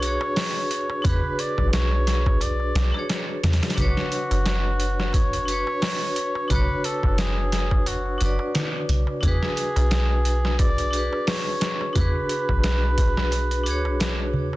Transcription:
Already playing: 808-style bass B1, vibraphone F#4 G#4 B4, muted trumpet C#5
0.00 vibraphone D4 F#4, closed hi-hat
0.05 vibraphone G#4 C#5
0.21 darbuka tek
0.36 snare, open hi-hat, darbuka tek
0.56 darbuka tek
0.71 closed hi-hat
0.90 darbuka tek
1.02 808-style bass E2, vibraphone D4 F#4, muted trumpet B4, kick, closed hi-hat, darbuka tek, darbuka dum
1.07 vibraphone G#4 B4
1.24 darbuka tek
1.39 muted trumpet D5, closed hi-hat
1.58 808-style bass B1, kick, darbuka tek
1.73 muted trumpet C#5, snare, closed hi-hat, darbuka tek
1.91 darbuka tek
2.07 snare, closed hi-hat
2.26 kick, darbuka tek
2.41 muted trumpet D5, closed hi-hat, darbuka tek
2.60 darbuka tek
2.75 808-style bass B1, snare, closed hi-hat
2.92 vibraphone D4 F#4, darbuka tek
2.97 vibraphone G#4 C#5
3.09 snare, closed hi-hat, darbuka tek
3.29 darbuka tek
3.43 808-style bass E2, snare, closed hi-hat, darbuka dum
3.53 snare, closed hi-hat
3.63 snare, closed hi-hat, darbuka tek
3.70 snare, closed hi-hat
3.75 808-style bass B1, vibraphone D4 F#4, muted trumpet F#4, kick, closed hi-hat, darbuka tek, darbuka dum
3.79 vibraphone B4 C#5
3.97 snare, darbuka tek
4.12 closed hi-hat
4.31 808-style bass F#1, closed hi-hat, darbuka tek
4.46 snare, closed hi-hat, darbuka tek
4.65 darbuka tek
4.80 closed hi-hat
5.00 snare, darbuka tek
5.13 muted trumpet C#5, kick, closed hi-hat, darbuka tek
5.33 closed hi-hat, darbuka tek
5.45 vibraphone D4 F#4, closed hi-hat
5.50 vibraphone B4 C#5
5.67 darbuka tek
5.82 snare, open hi-hat, darbuka tek
6.01 darbuka tek
6.16 closed hi-hat
6.35 darbuka tek
6.48 808-style bass B1, vibraphone D4 F#4, muted trumpet B4, kick, closed hi-hat, darbuka tek, darbuka dum
6.52 vibraphone B4 C#5
6.69 darbuka tek
6.84 muted trumpet A4, closed hi-hat
7.03 808-style bass F#1, kick, darbuka tek
7.18 muted trumpet G#4, snare, closed hi-hat, darbuka tek
7.38 darbuka tek
7.52 snare, closed hi-hat
7.71 kick, darbuka tek
7.86 muted trumpet F#4, closed hi-hat, darbuka tek
8.06 darbuka tek
8.18 808-style bass F#1, vibraphone D4 F#4, closed hi-hat
8.23 vibraphone B4 D5
8.39 darbuka tek
8.54 snare, closed hi-hat, darbuka tek
8.74 darbuka tek
8.89 808-style bass B1, closed hi-hat, darbuka dum
9.07 darbuka tek
9.20 808-style bass E2, vibraphone D4 F#4, muted trumpet G#4, kick, closed hi-hat, darbuka tek, darbuka dum
9.25 vibraphone G#4 B4
9.41 snare, darbuka tek
9.57 closed hi-hat
9.76 808-style bass B1, closed hi-hat, darbuka tek
9.90 snare, closed hi-hat, darbuka tek
10.11 darbuka tek
10.25 closed hi-hat
10.45 snare, darbuka tek
10.59 muted trumpet D5, kick, closed hi-hat, darbuka tek
10.78 closed hi-hat, darbuka tek
10.91 vibraphone D4 F#4, closed hi-hat
10.95 vibraphone G#4 B4
11.13 darbuka tek
11.27 muted trumpet C#5, snare, open hi-hat, darbuka tek
11.47 darbuka tek
11.61 snare, closed hi-hat
11.81 darbuka tek
11.93 808-style bass E2, vibraphone D4 F#4, muted trumpet B4, kick, closed hi-hat, darbuka tek, darbuka dum
11.98 vibraphone G#4 B4
12.15 darbuka tek
12.29 closed hi-hat
12.49 808-style bass B1, kick, darbuka tek
12.64 snare, closed hi-hat, darbuka tek
12.83 darbuka tek
12.98 kick, closed hi-hat
13.17 snare, darbuka tek
13.32 closed hi-hat, darbuka tek
13.51 closed hi-hat, darbuka tek
13.63 808-style bass D2, vibraphone D4 F#4, closed hi-hat
13.68 vibraphone G#4 C#5
13.85 808-style bass B1, darbuka tek
14.00 snare, closed hi-hat, darbuka tek
14.20 darbuka tek
14.33 808-style bass E2, darbuka dum
14.53 darbuka tek

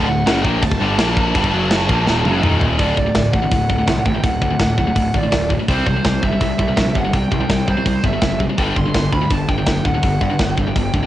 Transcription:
0.05 picked electric bass D1, distorted electric guitar D2 A2, lead electric guitar F#5
0.26 picked electric bass F#1, distorted electric guitar F#2 C#3 F#3, snare, crash
0.42 picked electric bass A#1, distorted electric guitar A#2 F3 A#3, lead electric guitar G5, kick
0.61 picked electric bass D1, distorted electric guitar D2 A2, lead electric guitar A5, kick, crash
0.71 kick
0.80 picked electric bass G1, distorted electric guitar G2 D3 G3
0.98 picked electric bass A#1, distorted electric guitar A#2 F3 A#3, snare, crash
1.17 kick
1.35 picked electric bass G1, distorted electric guitar G2 D3 G3, kick, crash
1.44 kick
1.53 picked electric bass F#1, distorted electric guitar F#2 C#3 F#3
1.71 snare, crash
1.89 picked electric bass A#1, distorted electric guitar A#2 F3 A#3, kick
2.07 picked electric bass D#1, distorted electric guitar D#2 A#2 D#3, snare
2.25 picked electric bass F#1, distorted electric guitar F#2 C#3 F#3, high tom
2.43 picked electric bass D#1, distorted electric guitar D#2 A#2 D#3, mid tom
2.61 floor tom
2.79 picked electric bass D1, distorted electric guitar D2 A2 D3, lead electric guitar D5, kick, open hi-hat
2.97 picked electric bass D1, distorted electric guitar D2 A2, lead electric guitar D5, kick
3.06 distorted electric guitar D2 A2
3.15 picked electric bass D1, distorted electric guitar D2 A2, kick, snare, open hi-hat
3.32 picked electric bass A1, distorted electric guitar D2 A2, lead electric guitar F#5, kick
3.43 distorted electric guitar D2 A2
3.51 picked electric bass D1, distorted electric guitar D2 A2, kick, open hi-hat
3.69 picked electric bass D1, distorted electric guitar D2 A2, kick
3.78 distorted electric guitar D2 A2
3.87 picked electric bass C2, distorted electric guitar D2 A2, kick, snare, open hi-hat
4.05 picked electric bass A1, distorted electric guitar D2 A2, lead electric guitar G5, kick
4.15 distorted electric guitar D2 A2
4.24 picked electric bass D1, distorted electric guitar D2 A2, lead electric guitar F#5, kick, open hi-hat
4.42 picked electric bass D2, distorted electric guitar D2 A2, kick
4.51 distorted electric guitar D2 A2
4.60 picked electric bass D1, distorted electric guitar D2 A2, kick, snare, open hi-hat
4.78 picked electric bass D1, distorted electric guitar D2 A2, lead electric guitar F#5, kick
4.87 distorted electric guitar D2 A2
4.95 picked electric bass D1, distorted electric guitar D2 A2, kick, open hi-hat
5.14 picked electric bass A1, distorted electric guitar D2 A2, lead electric guitar D5, kick
5.23 distorted electric guitar D2 A2
5.32 picked electric bass D1, distorted electric guitar D2 A2, kick, snare, open hi-hat
5.50 distorted electric guitar D2 A2, kick
5.59 distorted electric guitar D2 A2
5.68 picked electric bass C2, distorted electric guitar C3 G3 C4, lead electric guitar C5, kick, open hi-hat
5.87 picked electric bass C2, distorted electric guitar C3 G3, lead electric guitar C5, kick
5.96 distorted electric guitar C3 G3
6.05 picked electric bass C2, distorted electric guitar C3 G3, kick, snare, open hi-hat
6.23 picked electric bass G1, distorted electric guitar C3 G3, lead electric guitar E5, kick
6.33 distorted electric guitar C3 G3
6.41 picked electric bass C2, distorted electric guitar C3 G3, kick, open hi-hat
6.59 picked electric bass C2, distorted electric guitar C3 G3, kick
6.68 distorted electric guitar C3 G3
6.77 picked electric bass A#1, distorted electric guitar C3 G3, kick, snare, open hi-hat
6.95 picked electric bass G1, distorted electric guitar C3 G3, lead electric guitar F#5, kick
7.05 distorted electric guitar C3 G3
7.13 picked electric bass C2, distorted electric guitar C3 G3, lead electric guitar G5, kick, open hi-hat
7.32 picked electric bass C2, distorted electric guitar C3 G3, kick
7.40 distorted electric guitar C3 G3
7.49 picked electric bass C2, distorted electric guitar C3 G3, kick, snare, open hi-hat
7.68 picked electric bass C2, distorted electric guitar C3 G3, lead electric guitar C5, kick
7.77 distorted electric guitar C3 G3
7.86 picked electric bass C2, distorted electric guitar C3 G3, kick, open hi-hat
8.03 picked electric bass G1, distorted electric guitar C3 G3, lead electric guitar E5, kick
8.13 distorted electric guitar C3 G3
8.22 picked electric bass F#1, distorted electric guitar C3 G3, kick, snare, open hi-hat
8.40 distorted electric guitar C3 G3, kick
8.49 distorted electric guitar C3 G3
8.58 picked electric bass G1, distorted electric guitar G2 D3 G3, lead electric guitar G5, kick, open hi-hat
8.76 picked electric bass G1, distorted electric guitar G2 D3, lead electric guitar C6, kick
8.86 distorted electric guitar G2 D3
8.94 picked electric bass G1, distorted electric guitar G2 D3, kick, snare, open hi-hat
9.13 picked electric bass D2, distorted electric guitar G2 D3, lead electric guitar B5, kick
9.22 distorted electric guitar G2 D3
9.30 picked electric bass G1, distorted electric guitar G2 D3, lead electric guitar A5, kick, open hi-hat
9.49 picked electric bass G1, distorted electric guitar G2 D3, lead electric guitar G5, kick
9.58 distorted electric guitar G2 D3
9.66 picked electric bass F#1, distorted electric guitar G2 D3, kick, snare, open hi-hat
9.85 picked electric bass D1, distorted electric guitar G2 D3, lead electric guitar F#5, kick
9.94 distorted electric guitar G2 D3
10.03 picked electric bass G1, distorted electric guitar G2 D3, kick, open hi-hat
10.21 picked electric bass G2, distorted electric guitar G2 D3, lead electric guitar F#5, kick
10.30 distorted electric guitar G2 D3
10.39 picked electric bass G1, distorted electric guitar G2 D3, lead electric guitar G5, kick, snare, open hi-hat
10.57 picked electric bass G1, distorted electric guitar G2 D3, kick
10.67 distorted electric guitar G2 D3
10.76 picked electric bass G1, distorted electric guitar G2 D3, kick, open hi-hat
10.94 picked electric bass D1, distorted electric guitar G2 D3, kick
11.03 distorted electric guitar G2 D3

